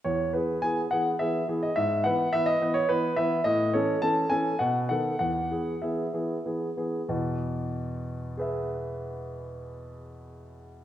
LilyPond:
<<
  \new Staff \with { instrumentName = "Grand piano" } { \time 3/4 \key e \major \tempo 4 = 98 cis''8 b'8 gis''8 fis''8 e''8. dis''16 | e''8 fis''8 e''16 dis''8 cis''16 b'8 e''8 | dis''8 cis''8 a''8 gis''8 fis''8 fis''8 | fis''4 e''4 r4 |
r2 <gis' b' e''>4~ | <gis' b' e''>2. | }
  \new Staff \with { instrumentName = "Grand piano" } { \time 3/4 \key e \major e,8 <e b gis'>8 <e b gis'>8 <e b gis'>8 <e b gis'>8 <e b gis'>8 | gis,8 <e b b'>8 <e b b'>8 <e b b'>8 <e b>8 <e b b'>8 | a,8 <e cis' a'>8 <e cis' a'>8 <e cis' a'>8 b,8 <dis b a'>8 | e,8 <e b gis'>8 <e b gis'>8 <e b gis'>8 <e b gis'>8 <e b gis'>8 |
<e, b,>2.~ | <e, b,>2. | }
>>